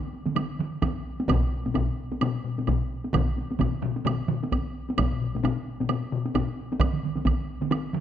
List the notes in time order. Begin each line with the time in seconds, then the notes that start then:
0.26 taiko mid, taiko high
0.35 taiko mid, taiko high, high woodblock
0.59 taiko mid
0.82 taiko, taiko mid, taiko high, high woodblock
1.20 taiko high
1.29 taiko, taiko low-mid, taiko high, high woodblock
1.66 taiko low-mid, taiko high
1.74 taiko, taiko low-mid, taiko high, high woodblock
2.12 taiko high
2.21 taiko low-mid, taiko high, high woodblock
2.44 taiko low-mid
2.58 taiko low-mid, taiko high
2.67 taiko, taiko low-mid, taiko high, high woodblock
3.04 taiko high
3.13 taiko, taiko low-mid, taiko mid, taiko high, high woodblock
3.37 taiko high
3.51 taiko high
3.59 taiko, taiko low-mid, taiko mid, taiko high, high woodblock
3.82 taiko low-mid, taiko mid
3.96 taiko high
4.05 taiko low-mid, taiko mid, taiko high, high woodblock
4.28 taiko low-mid, taiko mid
4.43 taiko high
4.52 taiko, taiko high, high woodblock
4.89 taiko high
4.98 taiko, taiko low-mid, taiko high, high woodblock
5.12 taiko low-mid
5.21 taiko low-mid
5.35 taiko low-mid, taiko high
5.43 taiko, taiko low-mid, taiko high, high woodblock
5.80 taiko low-mid, taiko high
5.89 taiko low-mid, taiko high, high woodblock
6.12 taiko low-mid
6.26 taiko high
6.35 taiko, taiko low-mid, taiko high, high woodblock
6.72 taiko high
6.80 taiko, taiko mid, taiko high, high woodblock
6.93 taiko mid
7.03 taiko mid
7.16 taiko mid, taiko high
7.25 taiko, taiko mid, taiko high, high woodblock
7.61 taiko mid, taiko high
7.71 taiko mid, taiko high, high woodblock
7.93 taiko mid